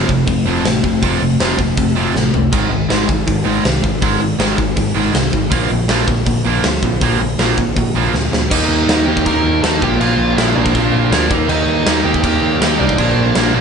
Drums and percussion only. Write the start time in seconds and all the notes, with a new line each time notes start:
0.09 kick
0.27 kick, open hi-hat
0.65 snare, open hi-hat
0.84 kick
1.03 kick, open hi-hat
1.40 snare, open hi-hat
1.59 kick
1.77 kick, open hi-hat
2.16 snare
2.34 floor tom
2.53 kick, crash
2.90 snare, open hi-hat
3.09 kick
3.28 kick, open hi-hat
3.65 snare, open hi-hat
3.84 kick
4.02 kick, open hi-hat
4.40 snare, open hi-hat
4.58 kick
4.77 kick, open hi-hat
5.15 snare, open hi-hat
5.33 kick
5.52 kick, open hi-hat
5.89 snare, open hi-hat
6.08 kick
6.26 kick, open hi-hat
6.64 snare, open hi-hat
6.83 kick
7.01 kick, open hi-hat
7.39 snare, open hi-hat
7.58 kick
7.76 kick, open hi-hat
8.14 snare
8.33 snare
8.51 kick, crash
8.89 snare, crash
9.17 kick
9.26 kick, crash
9.64 snare, crash
9.82 kick
10.01 crash
10.38 snare, crash
10.66 kick
10.75 kick, crash
11.12 snare, crash
11.31 kick
11.49 crash
11.86 snare, crash
12.14 kick
12.24 kick, crash
12.62 snare, crash
12.89 kick
12.98 kick, crash
13.35 snare, crash